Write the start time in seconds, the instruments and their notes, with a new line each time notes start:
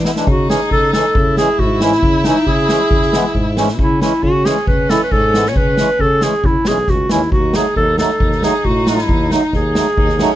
0.05 accordion G#3 B3, violin E4, snare
0.16 accordion E3 G#3 D4, snare
0.27 tuba C#3, violin D#4, clarinet F#4, kick
0.49 accordion E3 G#3 C#4, clarinet G#4, snare
0.71 tuba C#3, clarinet A4, kick
0.93 accordion E3 G#3 C#4, clarinet A4, snare
1.15 tuba C#3, violin E4, kick
1.37 accordion E3 G#3 C#4, clarinet G#4, snare
1.59 tuba G#2, clarinet F#4, kick
1.81 accordion E3 G#3 C#4, clarinet E4, snare
1.92 snare
2.02 tuba C#3, kick
2.24 accordion E3 G#3 C#4, clarinet D#4, snare
2.47 tuba C#3, clarinet G#4, kick
2.69 accordion E3 G#3 C#4, snare
2.91 tuba C#3, kick
3.02 snare
3.13 accordion E3 G#3 B3, snare
3.35 tuba G#2, kick
3.57 accordion E3 G#3 C#4, snare
3.68 snare
3.79 tuba C#3, violin C#4, clarinet E4, kick
4.01 accordion E3 G#3 C#4, clarinet E4, snare
4.23 tuba C#3, clarinet F#4, kick
4.45 accordion E3 G#3 C#4, clarinet G#4, snare
4.67 tuba C#3, clarinet B4, kick
4.90 accordion E3 G#3 E4, clarinet A4, snare
5.04 clarinet B4
5.12 tuba G#2, clarinet A4, kick
5.34 accordion E3 G#3 B3, snare
5.46 clarinet C#5, snare
5.56 tuba C#3, clarinet B4, kick
5.77 accordion E3 G#3 C#4, snare
5.99 tuba C#3, clarinet A4, kick
6.21 accordion E3 G#3 C#4, clarinet G#4, snare
6.44 tuba C#3, clarinet E4, kick
6.65 tuba B1, accordion E3 G#3 C#4, clarinet G#4, snare
6.87 tuba C#2, clarinet F#4, kick, snare
7.09 tuba D#2, accordion E3 G#3 C#4, clarinet E4, snare
7.32 tuba D#2, violin D#4, clarinet F#4, kick
7.54 accordion F#3 A3 D#4, clarinet G#4, snare
7.76 tuba D#2, clarinet A4, kick
7.98 accordion F#3 A3 D#4, clarinet A4, snare
8.20 tuba D#2, kick
8.32 snare
8.43 accordion F#3 A3 D#4, clarinet G#4, snare
8.65 tuba A2, clarinet F#4, kick
8.87 accordion F#3 A3 D#4, clarinet E4, snare
8.98 snare
9.09 tuba D#2, kick
9.31 accordion F#3 A3 D#4, clarinet D#4, snare
9.53 tuba D#2, clarinet G#4, kick, snare
9.75 accordion F#3 A3 D#4, snare
9.97 tuba D#2, violin D#4, kick
10.09 snare
10.19 accordion F#3 A3 D#4, violin C#4, snare